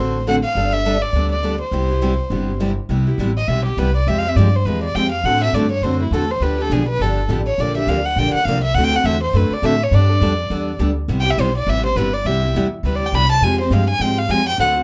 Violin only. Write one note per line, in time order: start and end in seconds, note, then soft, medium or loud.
0.00 0.26 C5 medium
0.28 0.36 F#5 medium
0.45 0.74 F5 medium
0.73 1.04 E5 medium
1.02 1.31 D5 medium
1.32 1.59 D5 medium
1.62 2.57 C5 medium
3.37 3.50 D#5 medium
3.48 3.65 E5 medium
3.65 3.80 G4 medium
3.79 3.96 B4 medium
3.96 4.09 D5 medium
4.08 4.20 E5 medium
4.18 4.30 F5 medium
4.29 4.38 E5 medium
4.36 4.57 D5 medium
4.56 4.68 C5 medium
4.67 4.83 B4 medium
4.83 4.97 D5 medium
4.95 5.11 G5 loud
5.12 5.27 F5 medium
5.25 5.42 F#5 loud
5.44 5.56 E5 medium
5.55 5.71 D5 medium
5.71 5.85 C#5 medium
5.83 6.00 C5 medium
6.03 6.14 E4 medium
6.12 6.33 A4 medium
6.31 6.44 C5 medium
6.43 6.63 B4 medium
6.62 6.74 A4 medium
6.73 6.88 G#4 medium
6.89 7.04 B4 medium
7.02 7.30 A4 medium
7.47 7.62 C#5 medium
7.60 7.76 D5 medium
7.77 7.90 E5 medium
7.89 8.07 F5 medium
8.05 8.20 F#5 medium
8.18 8.33 G5 medium
8.34 8.47 F#5 medium
8.45 8.63 F5 medium
8.64 8.76 E5 medium
8.75 8.86 F#5 medium
8.84 8.97 G5 loud
8.96 9.07 F#5 medium
9.06 9.22 E5 medium
9.23 9.38 C5 medium
9.37 9.55 B4 medium
9.53 9.67 D5 medium
9.66 9.85 E5 medium
9.83 9.96 C#5 medium
9.94 10.81 D5 medium
11.21 11.32 G5 medium
11.30 11.42 E5 medium
11.41 11.57 C5 medium
11.58 11.71 D5 medium
11.70 11.85 E5 loud
11.86 11.98 C5 medium
11.96 12.15 B4 medium
12.14 12.27 D5 medium
12.26 12.55 E5 medium
12.86 12.97 B4 medium
12.95 13.08 D5 medium
13.07 13.16 G5 medium
13.15 13.31 B5 loud
13.32 13.45 A5 medium
13.44 13.60 G#5 medium
13.61 13.75 C5 medium
13.73 13.89 F5 medium
13.90 14.03 G#5 loud
14.01 14.20 G5 medium
14.18 14.33 F5 medium
14.31 14.48 G#5 loud
14.48 14.59 G5 loud
14.60 14.70 F#5 medium